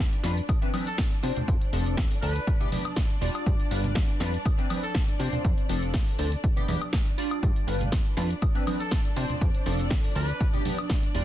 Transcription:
Already playing: analog polysynth G3 D4 F4 B4, string section D4 D5
0.00 shaker
0.13 closed hi-hat
0.24 analog synth bass F2, analog polysynth G3 D4 F4 B4, snare, open hi-hat, shaker
0.37 closed hi-hat, shaker
0.49 kick, closed hi-hat, high woodblock, shaker
0.62 analog polysynth E3 C4 D4 B4, closed hi-hat
0.73 analog polysynth E3 C4 D4 B4, open hi-hat, high conga, high woodblock, shaker
0.87 trumpet section A4, closed hi-hat, shaker
0.98 kick, snare, closed hi-hat, shaker
1.12 closed hi-hat
1.23 analog synth bass C3, analog polysynth F3 C4 D4 C5, open hi-hat, shaker
1.36 closed hi-hat, low conga, shaker
1.48 analog synth bass F2, kick, closed hi-hat, shaker
1.61 closed hi-hat, shaker
1.73 analog synth bass F1, analog polysynth F3 C4 D4 A4, open hi-hat, shaker
1.86 closed hi-hat, shaker
1.97 analog synth bass D2, kick, snare, closed hi-hat, shaker
2.11 open hi-hat
2.22 analog synth bass D2, analog polysynth F3 C4 D4 A4, trumpet section B4, open hi-hat, shaker
2.36 closed hi-hat, shaker
2.47 kick, closed hi-hat, shaker
2.60 analog polysynth E3 B3 D4 G4, closed hi-hat, low conga
2.72 analog polysynth E3 B3 D4 G4, open hi-hat, high conga, low conga, shaker
2.85 closed hi-hat, high woodblock, shaker
2.96 kick, snare, closed hi-hat, shaker
3.10 closed hi-hat
3.20 analog synth bass E1, analog polysynth G3 D4 F4 D5, open hi-hat, shaker
3.22 shaker
3.35 closed hi-hat, high woodblock, shaker
3.46 analog synth bass G2, kick, closed hi-hat, shaker
3.60 closed hi-hat, shaker
3.71 analog synth bass G1, analog polysynth G3 D4 F4 B4, open hi-hat, shaker
3.84 closed hi-hat, low conga, shaker
3.95 analog synth bass F2, kick, snare, closed hi-hat, shaker
4.09 closed hi-hat
4.20 analog synth bass F2, analog polysynth G3 D4 F4 B4, snare, open hi-hat, shaker
4.33 closed hi-hat, shaker
4.45 kick, closed hi-hat, high woodblock, shaker
4.46 shaker
4.58 analog polysynth E3 C4 D4 B4, closed hi-hat
4.69 analog polysynth E3 C4 D4 B4, open hi-hat, high conga, high woodblock, shaker
4.83 trumpet section A4, closed hi-hat, shaker
4.95 kick, snare, closed hi-hat, shaker
5.08 closed hi-hat
5.19 analog synth bass C3, analog polysynth F3 C4 D4 C5, open hi-hat, shaker
5.32 closed hi-hat, low conga, shaker
5.45 analog synth bass F2, kick, closed hi-hat, shaker
5.58 closed hi-hat, shaker
5.69 analog synth bass F1, analog polysynth F3 C4 D4 A4, open hi-hat, shaker
5.83 closed hi-hat, shaker
5.93 analog synth bass D2, kick, snare, closed hi-hat, shaker
6.07 open hi-hat
6.18 analog synth bass D2, analog polysynth F3 C4 D4 A4, open hi-hat, shaker
6.31 closed hi-hat, shaker
6.44 kick, closed hi-hat, shaker
6.56 analog polysynth E3 B3 D4 G4, closed hi-hat, low conga
6.68 analog synth bass E2, analog polysynth E3 B3 D4 G4, open hi-hat, high conga, low conga, shaker
6.82 closed hi-hat, high woodblock, shaker
6.93 kick, snare, closed hi-hat, shaker
7.06 closed hi-hat
7.18 analog polysynth G3 D4 F4 D5, open hi-hat, shaker
7.31 closed hi-hat, high woodblock, shaker
7.43 analog synth bass G2, string section D4 D5, kick, closed hi-hat, shaker
7.56 closed hi-hat, shaker
7.67 analog synth bass G1, analog polysynth G3 D4 F4 B4, open hi-hat, shaker
7.81 closed hi-hat, low conga, shaker
7.92 analog synth bass F2, kick, snare, closed hi-hat, shaker
8.06 closed hi-hat
8.17 analog synth bass F2, analog polysynth G3 D4 F4 B4, snare, open hi-hat, shaker
8.30 closed hi-hat, shaker
8.42 kick, closed hi-hat, high woodblock, shaker
8.55 analog polysynth E3 C4 D4 B4, closed hi-hat
8.66 analog polysynth E3 C4 D4 B4, open hi-hat, high conga, high woodblock, shaker
8.80 trumpet section A4, closed hi-hat, shaker
8.91 kick, snare, closed hi-hat, shaker
9.05 closed hi-hat
9.16 analog synth bass C3, analog polysynth F3 C4 D4 C5, open hi-hat, shaker
9.30 closed hi-hat, low conga, shaker
9.41 analog synth bass F2, kick, closed hi-hat, shaker
9.54 closed hi-hat, shaker
9.65 analog synth bass F1, analog polysynth F3 C4 D4 A4, open hi-hat, shaker
9.79 closed hi-hat, shaker
9.91 analog synth bass D2, kick, snare, closed hi-hat, shaker
10.04 open hi-hat
10.15 analog synth bass D2, analog polysynth F3 C4 D4 A4, trumpet section B4, open hi-hat, shaker
10.29 closed hi-hat, shaker
10.40 kick, closed hi-hat, shaker
10.53 analog polysynth E3 B3 D4 G4, closed hi-hat, low conga
10.65 analog polysynth E3 B3 D4 G4, open hi-hat, high conga, low conga, shaker
10.78 closed hi-hat, high woodblock, shaker
10.90 kick, snare, closed hi-hat, shaker
11.03 closed hi-hat
11.14 analog synth bass E1, analog polysynth G3 D4 F4 D5, open hi-hat, shaker

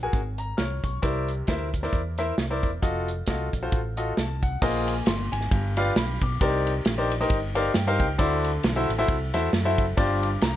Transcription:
0.03 grand piano F#4 G#4 A#4 G#5
0.13 fingered electric bass G#1, kick, closed hi-hat
0.38 grand piano A#5, closed hi-hat
0.57 fingered electric bass C2, grand piano C#5 F6, snare, closed hi-hat
0.84 fingered electric bass B1, grand piano C#6, kick, closed hi-hat
1.02 fingered electric bass C2, grand piano C3 E4 A#4 C5 D5, kick, closed hi-hat
1.28 closed hi-hat
1.47 fingered electric bass D2, grand piano E4 A#4 C5 E5, kick, snare, closed hi-hat
1.74 kick, closed hi-hat
1.83 grand piano E4 A#4 C5 D5, snare
1.93 fingered electric bass E2, kick, closed hi-hat
2.18 grand piano E4 A#4 C5 E5, snare, closed hi-hat
2.38 fingered electric bass C2, snare, closed hi-hat
2.50 grand piano E4 A#4 C5 D5
2.63 fingered electric bass E1, kick, closed hi-hat
2.82 fingered electric bass F1, grand piano F4 F#4 A4 D#5, kick, closed hi-hat
3.08 closed hi-hat
3.27 fingered electric bass C2, grand piano F4 F#4 A4 D#5, kick, snare, closed hi-hat
3.53 fingered electric bass A#1, kick, closed hi-hat
3.63 grand piano F4 F#4 A4 C5
3.72 fingered electric bass A1, kick, closed hi-hat
3.97 grand piano F4 F#4 A4 D#5, closed hi-hat
4.17 fingered electric bass C2, grand piano A5, snare, closed hi-hat
4.43 grand piano F#5, kick, closed hi-hat
4.62 fingered electric bass A#1, grand piano A#2 F4 G#4 A#4 C5 D#5, kick, crash
4.87 grand piano G#5, ride bell
5.06 fingered electric bass G1, grand piano C6, snare, ride bell
5.32 fingered electric bass G#1, grand piano G#5, ride bell
5.41 snare
5.51 fingered electric bass G1, grand piano G2, kick, ride bell
5.77 grand piano F4 G4 B4 D5 F5, snare, ride bell
5.96 fingered electric bass B1, grand piano B5, snare, ride bell
6.21 fingered electric bass B1, grand piano D6, kick, ride bell
6.41 fingered electric bass C2, grand piano C3 D#4 G4 A#4 C5 D5, kick, ride bell
6.67 ride bell
6.85 fingered electric bass A#1, snare, ride bell
6.98 grand piano D#4 G4 A#4 C5 D5
7.11 ride bell
7.20 grand piano D#4 G4 A#4 C5 D#5, snare
7.30 fingered electric bass G1, kick, ride bell
7.55 grand piano D#4 G4 A#4 C5 D5 F5, ride bell
7.74 fingered electric bass G2, grand piano G5, snare, ride bell
7.87 grand piano D#4 G4 A#4 C5 F5
8.00 fingered electric bass C#2, grand piano G5, kick, ride bell
8.18 fingered electric bass D2, grand piano D3 E4 F#4 A4 C5 D5, kick, ride bell
8.44 ride bell
8.63 fingered electric bass B1, snare, ride bell
8.76 grand piano E4 F#4 A4 C5 E5
8.89 fingered electric bass A1, ride bell
8.98 grand piano E4 F#4 A4 C5 E5, snare
9.08 fingered electric bass C2, kick, ride bell
9.34 fingered electric bass E2, grand piano E4 F#4 A4 C5 E5, snare, ride bell
9.53 fingered electric bass F#2, snare, ride bell
9.65 grand piano E4 F#4 A4 C5 E5
9.78 fingered electric bass F#1, kick, ride bell
9.97 fingered electric bass G1, grand piano G2 D4 F4 G4 C5 D5, kick, ride bell
10.22 grand piano D6, ride bell
10.41 fingered electric bass C2, grand piano A#5, snare, ride bell

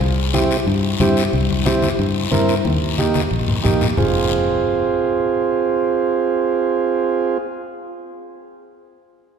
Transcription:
0.01 fingered electric bass C2, high conga, long guiro
0.33 transistor combo organ C4 E4 G4, high conga, short guiro
0.51 short guiro
0.67 fingered electric bass G2, high conga, long guiro
1.00 fingered electric bass G2, transistor combo organ C4 E4 G4, high conga, short guiro
1.17 short guiro
1.33 fingered electric bass C2, high conga, long guiro
1.50 high conga
1.65 transistor combo organ C4 E4 G4, high conga, short guiro
1.82 high conga, short guiro
1.99 fingered electric bass G2, high conga, long guiro
2.31 fingered electric bass G2, transistor combo organ C4 E4 A#4, high conga, short guiro
2.49 short guiro
2.65 fingered electric bass D#2, high conga, long guiro
2.98 transistor combo organ A#3 D#4 G4, high conga, short guiro
3.14 high conga, short guiro
3.31 fingered electric bass A#1, long guiro
3.48 low conga
3.64 fingered electric bass A#1, transistor combo organ A#3 D#4 G4, low conga, short guiro
3.81 low conga, short guiro
3.97 fingered electric bass F1, transistor combo organ C4 F4 G#4, low conga, long guiro

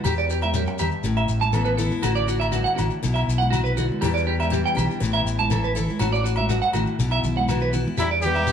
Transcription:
0.04 steel-string acoustic guitar E2 G4, fingered electric bass E2, clean electric guitar G4, low agogo, shekere
0.18 clean electric guitar D5, shekere
0.30 clean electric guitar G4, shekere
0.42 clean electric guitar E5, high conga, low agogo, shekere
0.54 steel-string acoustic guitar F#2, clean electric guitar G4, shekere
0.67 muted clean electric guitar stroke, shekere
0.78 fingered electric bass E2, steel-string acoustic guitar G2, clean electric guitar G4, low conga, low agogo, shekere
0.91 shekere
1.04 fingered electric bass A1, steel-string acoustic guitar A2, muted steel-string acoustic guitar stroke, shekere
1.17 clean electric guitar E5, low agogo
1.29 fingered electric bass A1, shekere
1.41 clean electric guitar A5, high conga, shekere
1.53 steel-string acoustic guitar E3 B3, clean electric guitar A4, low conga, low agogo, shekere
1.65 clean electric guitar B4, shekere
1.77 steel-string acoustic guitar E4, clean electric guitar A4, low conga, shekere
1.91 high conga, shekere
2.03 fingered electric bass A1, steel-string acoustic guitar D3 A3 E4, clean electric guitar F#4, muted steel-string acoustic guitar stroke, low agogo, shekere
2.15 clean electric guitar D5, shekere
2.28 clean electric guitar F#4, shekere
2.40 clean electric guitar E5, low agogo, shekere
2.52 steel-string acoustic guitar G2, clean electric guitar F#4, shekere
2.64 clean electric guitar F#5, shekere
2.76 fingered electric bass A1, steel-string acoustic guitar A2, clean electric guitar F#4, low conga, low agogo, shekere
2.90 shekere
3.03 fingered electric bass B1, steel-string acoustic guitar B2 E4, shekere
3.14 clean electric guitar E5, low agogo
3.28 fingered electric bass B1, shekere
3.38 clean electric guitar F#5, high conga, shekere
3.50 steel-string acoustic guitar C3, clean electric guitar F#4, low conga, low agogo, shekere
3.64 clean electric guitar B4, shekere
3.77 steel-string acoustic guitar D3, clean electric guitar F#4, low conga, shekere
3.92 high conga
4.01 steel-string acoustic guitar E2 E3 G3 D4 G4, fingered electric bass E2, clean electric guitar G4, low agogo, shekere
4.14 clean electric guitar D5, shekere
4.27 clean electric guitar G4
4.40 clean electric guitar E5, high conga, low agogo, shekere
4.50 steel-string acoustic guitar E3 G3, clean electric guitar G4, shekere
4.66 clean electric guitar G5, shekere
4.75 fingered electric bass B1, steel-string acoustic guitar D4, clean electric guitar G4, low conga, low agogo, shekere
4.91 shekere
5.00 fingered electric bass A1, steel-string acoustic guitar A2 E3 B3 E4, shekere
5.13 clean electric guitar E5, low agogo
5.25 fingered electric bass A1, shekere
5.39 clean electric guitar A5, high conga, shekere
5.50 steel-string acoustic guitar E3, clean electric guitar A4, low conga, low agogo, shekere
5.64 clean electric guitar B4, shekere
5.75 steel-string acoustic guitar E4, clean electric guitar A4, shekere
5.79 low conga
5.89 high conga, shekere
5.99 fingered electric bass A1, steel-string acoustic guitar A2 F#4, clean electric guitar F#4, low agogo, shekere
6.13 clean electric guitar D5, shekere
6.24 clean electric guitar F#4, shekere
6.36 clean electric guitar E5, low agogo
6.40 high conga
6.49 steel-string acoustic guitar G2, clean electric guitar F#4, shekere
6.62 clean electric guitar F#5, shekere
6.73 fingered electric bass A1, steel-string acoustic guitar A2, clean electric guitar F#4, low conga, low agogo, shekere
6.87 shekere
6.99 fingered electric bass B1, steel-string acoustic guitar B2 E4, shekere
7.11 clean electric guitar E5, low agogo, shekere
7.23 fingered electric bass B1, low conga, shekere
7.37 clean electric guitar F#5, high conga
7.49 steel-string acoustic guitar E3 B3, clean electric guitar F#4, low conga, low agogo, shekere
7.61 clean electric guitar B4, shekere
7.73 steel-string acoustic guitar E4, clean electric guitar F#4, low conga, shekere
7.88 high conga
7.97 fingered electric bass E2, steel-string acoustic guitar E2 G3 D4, tenor saxophone G3, trumpet E4, clean electric guitar G4, muted steel-string acoustic guitar stroke, low agogo, shekere
8.11 clean electric guitar D5
8.22 trumpet G4, clean electric guitar G4, low conga, shekere
8.26 steel-string acoustic guitar G3, tenor saxophone B3
8.35 clean electric guitar E5, high conga, low agogo
8.47 clean electric guitar G4, shekere

